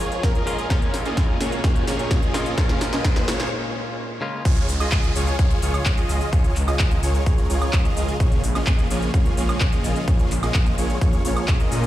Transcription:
Already playing: F3 G#3 C#4 F4 G#4 C#5 G#5, riser
0.00 C#2 F4 G#4 C#5
0.12 closed hi-hat
0.23 C#2 A#4, kick, snare, closed hi-hat
0.35 F4 G#4 D#5, closed hi-hat
0.46 C#2 A#2 F3 G#3 C#4 F4, open hi-hat
0.59 closed hi-hat
0.69 A#1 A#2 G#3 A#3 C#4 F4 G#4 A#4 C#5, kick, snare, closed hi-hat
0.82 closed hi-hat
0.94 A#1, snare, open hi-hat
1.05 A#3 C#4 F4 G#4 D#5, closed hi-hat
1.17 A#1, kick, snare, closed hi-hat
1.40 A#1 A#3 C#4 F4 G#4 C#5, snare, open hi-hat
1.52 closed hi-hat
1.64 A#1 A#3 C#4 F4 G#4 C#5, kick, snare, closed hi-hat
1.76 closed hi-hat
1.87 A#1 A#3 C#4 F4 G#4 C#5, snare, open hi-hat
1.99 closed hi-hat
2.11 A#1, kick, snare, closed hi-hat
2.23 A#3 C#4 F4 G#4 D#5, closed hi-hat
2.33 A#1 A#2 G#3 A#3 C#4 F4, snare, open hi-hat
2.46 closed hi-hat
2.56 A#1 A#2 G#3 A#3 C#4 F4 G#4, kick, snare, closed hi-hat
2.69 snare, closed hi-hat
2.81 A#1, snare, open hi-hat
2.93 A#3 C#4 F4 G#4 D#5, snare, closed hi-hat
3.04 A#1, kick, snare, closed hi-hat
3.16 snare, closed hi-hat
3.28 A#1 A#3 C#4 F4 G#4 C#5, snare, open hi-hat
3.40 snare, closed hi-hat
4.21 C#3 G#3 A#3 C#4 F4
4.45 C#2 C#3 F3 G#3 F4 G#4 C#5, kick, closed hi-hat, crash, downlifter, cabasa
4.57 closed hi-hat, cabasa
4.69 C#2, open hi-hat, cabasa
4.80 F4 G#4 D#5, closed hi-hat, cabasa, high woodblock
4.92 C#2, kick, clap, closed hi-hat, cabasa
5.04 closed hi-hat, cabasa
5.16 C#2 F4 G#4 C#5, open hi-hat, cabasa
5.27 closed hi-hat, cabasa
5.39 C#2 F4 G#4 C#5, kick, closed hi-hat, cabasa
5.51 closed hi-hat, cabasa
5.62 C#2 F4 G#4 C#5, open hi-hat, cabasa
5.74 closed hi-hat, cabasa, high woodblock
5.86 C#2, kick, clap, closed hi-hat, cabasa
5.98 F4 G#4 D#5, closed hi-hat, cabasa
6.09 C#2, open hi-hat, cabasa
6.21 closed hi-hat, cabasa
6.33 C#2 F4 G#4 A#4 C#5, kick, closed hi-hat, cabasa
6.44 closed hi-hat, cabasa
6.56 C#2, clap, open hi-hat, cabasa
6.68 F4 G#4 D#5, closed hi-hat, cabasa, high woodblock
6.79 C#2, kick, clap, closed hi-hat, cabasa
6.91 closed hi-hat, cabasa
7.03 C#2 F4 G#4 C#5, open hi-hat, cabasa
7.15 closed hi-hat, cabasa
7.26 C#2 F4 G#4 C#5, kick, closed hi-hat, cabasa
7.38 closed hi-hat, cabasa
7.50 C#2 F4 G#4 C#5, open hi-hat, cabasa
7.62 closed hi-hat, cabasa, high woodblock
7.73 C#2, kick, clap, closed hi-hat, cabasa
7.85 F4 G#4 D#5, closed hi-hat, cabasa
7.97 C#2, open hi-hat, cabasa
8.08 closed hi-hat, cabasa
8.20 A#1 A#3 C#4 F4 G#4 C#5, kick, closed hi-hat, cabasa
8.32 closed hi-hat, cabasa
8.43 A#1, open hi-hat, cabasa
8.55 A#3 C#4 F4 G#4 D#5, closed hi-hat, cabasa, high woodblock
8.67 A#1, kick, clap, closed hi-hat, cabasa
8.79 closed hi-hat, cabasa
8.90 A#1 A#3 C#4 F4 G#4 C#5, open hi-hat, cabasa
9.02 closed hi-hat, cabasa
9.14 A#1 A#3 C#4 F4 G#4 C#5, kick, closed hi-hat, cabasa
9.26 closed hi-hat, cabasa
9.37 A#1 A#3 C#4 F4 G#4 C#5, open hi-hat, cabasa
9.49 closed hi-hat, cabasa, high woodblock
9.61 A#1, kick, clap, closed hi-hat, cabasa
9.73 A#3 C#4 F4 G#4 D#5, closed hi-hat, cabasa
9.84 A#1, open hi-hat, cabasa
9.96 closed hi-hat, cabasa
10.08 A#1 A#3 C#4 F4 G#4 C#5, kick, closed hi-hat, cabasa
10.20 closed hi-hat, cabasa
10.31 A#1, clap, open hi-hat, cabasa
10.43 A#3 C#4 F4 G#4 D#5, closed hi-hat, cabasa, high woodblock
10.54 A#1, kick, clap, closed hi-hat, cabasa
10.66 closed hi-hat, cabasa
10.78 A#1 A#3 C#4 F4 G#4 C#5, open hi-hat, cabasa
10.90 closed hi-hat, cabasa
11.01 A#1 A#3 C#4 F4 G#4 C#5, kick, closed hi-hat, cabasa
11.13 closed hi-hat, cabasa
11.25 A#1 A#3 C#4 F4 G#4 C#5, open hi-hat, cabasa
11.37 closed hi-hat, cabasa, high woodblock
11.48 A#1, kick, clap, closed hi-hat, cabasa
11.60 A#3 C#4 F4 G#4 D#5, closed hi-hat, cabasa
11.72 A#2, open hi-hat, cabasa
11.83 closed hi-hat

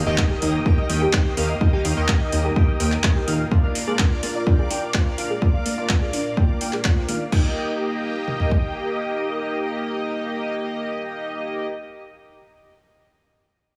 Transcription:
Already playing: A#4 D#5 G5 D#6, impact
0.06 D#2 D#3 A#3 D#4 G4 D#5
0.18 D#3 D#4 G4 D#5, kick, clap
0.30 G4
0.42 D#2 D#3 A#3 D#4 G4 D#5, open hi-hat
0.66 D#3 A#3 D#4 G4 G5, kick
0.78 D#3 A#3 D#4 G4 D#5
0.90 D#2 D#3 A#3 D#4 G4 G5, open hi-hat
1.02 G4
1.13 D#3 A#3 D#4 G4 C5, kick, clap
1.37 D#2 D#3 A#3 D#4 G4 F5, open hi-hat
1.49 D#5
1.61 D#3 A#3 D#4 G4 D#5, kick
1.73 D#3 A#3 D#4 G4 F5
1.85 D#2 D#4, open hi-hat
1.97 D#2 D#3 A#3 D#4 G4 D#5
2.08 D#3 A#3 D#4 G4 D#5, kick, clap
2.21 D#5
2.32 D#2 D#3 A#3 D#4 G4 D#5, open hi-hat
2.44 G4
2.56 D#3 A#3 D#4 G4 G5, kick
2.68 D#3 A#3 D#4 G4 D#5
2.80 D#2 D#3 A#3 D#4 G4 G5, open hi-hat
2.92 D#5, clap
3.04 D#3 A#3 D#4 G4 C5, kick, clap
3.16 G4
3.28 D#2 A#2 A#3 D#4 G4 F5, open hi-hat
3.51 A#2 A#3 D4 F4 D5 F5 D6, kick
3.64 A#2 A#3 D4 F4 D5 F5
3.75 D4, open hi-hat
3.87 A#2 A#3 D4 F4 G#4 D5
3.99 A#2 A#3 D4 F4, kick, clap
4.23 A#2 A#3 D4 F4 D5, open hi-hat
4.35 D5
4.47 A#2 A#3 D4 F4 G5, kick
4.59 A#2 A#3 D4 F4 G#4 D5
4.70 A#2 A#3 D4 F4 G5, open hi-hat
4.94 A#2 A#3 D4 F4 C5, kick, clap
5.06 D5
5.18 A#2 A#3 D4 F4 F5, open hi-hat
5.30 G#4
5.42 A#2 A#3 D4 F4 D5, kick
5.54 A#2 A#3 D4 F4 F5
5.66 A#3, open hi-hat
5.78 A#2 A#3 D4 F4 D5
5.89 A#2 A#3 D4 F4 D5, kick, clap
6.02 G#4
6.13 A#2 A#3 D4 F4 D5, open hi-hat
6.37 A#2 A#3 D4 F4 G5, kick
6.49 A#2 A#3 D4 F4 D5
6.61 A#2 A#3 D4 F4 G5, open hi-hat
6.73 G#4, clap
6.84 A#2 A#3 D4 F4 C5, kick, clap
7.09 D#3 A#3 D4 F4 F5, open hi-hat
7.21 D5
7.32 A#3 D#4 G4 D#5 G5, kick, crash
8.28 mid tom
8.40 floor tom
8.51 kick

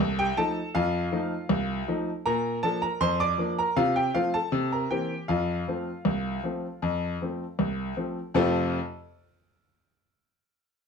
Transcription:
Already playing: A4
0.00 C2
0.19 G4 G5
0.37 F3 A3 D#4 A4 A5
0.75 F2 F4 F5
1.12 F3 A3 D#4
1.49 C2
1.88 F3 A3 D#4
2.26 A#2 A#4 A#5
2.63 F3 A#3 D4 A4 A5
2.82 A#4 A#5
3.00 F2 C5 C6
3.20 D5 D6
3.38 F3 A#3 D4
3.59 A#4 A#5
3.76 C3 F4 F5
3.96 G4 G5
4.14 F3 A3 C4 F4 F5
4.34 A4 A5
4.52 C3
4.72 A#4 A#5
4.91 E3 A#3 C4 G4 G5
5.28 F2 F4 F5
5.68 F3 A3 C4
6.05 C2
6.43 F3 A3 C4
6.82 F2
7.22 F3 A3 C4
7.59 C2
7.97 F3 A3 C4
8.34 F2 C3 A3 C4 F4 A4

